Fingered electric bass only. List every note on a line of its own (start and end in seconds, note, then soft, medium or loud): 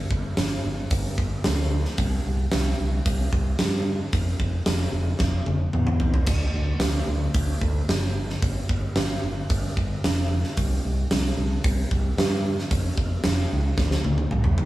0.11 0.30 G1 medium
0.37 0.56 G1 medium
0.65 0.84 G1 medium
0.91 1.10 G1 medium
1.18 1.37 G1 loud
1.46 1.84 D2 medium
1.99 2.18 C2 medium
2.26 2.45 C2 medium
2.53 2.72 C2 medium
2.80 2.99 C2 medium
3.06 3.25 C2 medium
3.33 3.52 C2 medium
3.60 3.98 G2 medium
4.13 4.32 F1 medium
4.40 4.59 F1 medium
4.66 4.85 F1 medium
4.93 5.12 F1 medium
5.20 5.39 F1 medium
5.47 5.66 F1 medium
5.74 6.12 E2 medium
6.27 6.47 D2 medium
6.54 6.73 D2 medium
6.79 6.99 D2 medium
7.08 7.27 D2 medium
7.34 7.54 D2 medium
7.62 7.81 D2 medium
7.89 8.15 F#1 medium
8.15 8.34 G1 medium
8.42 8.61 G1 medium
8.70 8.88 G1 medium
8.96 9.15 G1 loud
9.23 9.42 G1 medium
9.50 9.69 G1 medium
9.77 9.96 G1 medium
10.04 10.42 F1 medium
10.58 10.76 C2 medium
10.85 11.03 C2 medium
11.12 11.30 C2 loud
11.37 11.56 C2 loud
11.64 11.83 C2 loud
11.91 12.10 C2 medium
12.17 12.55 G2 medium
12.71 12.90 F1 medium
12.98 13.17 F1 medium
13.25 13.43 F1 loud
13.52 13.71 C#2 medium
13.78 13.97 D2 medium
14.05 14.24 D2 medium
14.32 14.65 C2 medium